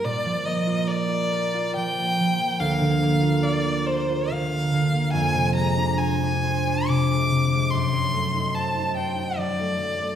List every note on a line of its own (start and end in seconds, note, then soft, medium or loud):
0.00 0.44 A#3 soft
0.00 0.86 A#4 soft
0.05 2.63 A#2 medium
0.05 0.47 D5 medium
0.25 1.75 F3 soft
0.45 1.97 A#3 soft
0.45 0.90 D#5 medium
0.67 1.07 F4 soft
0.88 1.30 A#4 soft
0.88 1.75 D5 medium
1.09 1.53 F4 soft
1.31 3.42 A#4 soft
1.54 3.21 F4 soft
1.76 2.18 F3 soft
1.76 2.62 G5 medium
1.99 2.39 A#3 soft
2.20 6.10 F3 soft
2.40 3.00 A#3 soft
2.60 5.16 D2 medium
2.60 3.45 F5 medium
2.81 4.30 D3 soft
3.01 4.51 A#3 soft
3.22 3.63 F4 soft
3.43 3.85 A#4 soft
3.43 3.88 D5 medium
3.64 4.08 F4 soft
3.86 5.16 A#4 soft
3.86 4.33 C5 medium
4.10 7.76 F4 soft
4.31 4.72 D3 soft
4.31 5.13 F5 medium
4.52 4.92 A#3 soft
4.73 5.17 D3 soft
4.93 5.17 A#3 soft
5.13 7.76 F2 medium
5.13 5.54 G#5 medium
5.34 6.87 C3 soft
5.55 7.10 G#3 soft
5.55 5.99 A#5 medium
5.78 6.21 D4 soft
5.98 6.42 C5 soft
5.98 6.89 G#5 medium
6.22 6.66 D4 soft
6.44 8.53 C5 soft
6.67 7.76 D4 soft
6.87 7.30 C3 soft
6.87 7.72 D6 medium
7.12 7.51 G#3 soft
7.31 7.76 C3 soft
7.52 7.76 G#3 soft
7.70 10.15 F#2 soft
7.70 8.56 C6 medium
7.93 9.37 F#3 soft
8.14 9.59 A3 soft
8.34 8.76 D#4 soft
8.54 8.95 C5 soft
8.54 8.96 A5 medium
8.77 9.16 D#4 soft
8.96 10.15 C5 soft
8.96 9.40 G5 medium
9.18 10.15 D#4 soft
9.38 9.79 F#3 soft
9.38 10.15 D5 medium
9.60 10.00 A3 soft
9.80 10.15 F#3 soft
10.01 10.15 A3 soft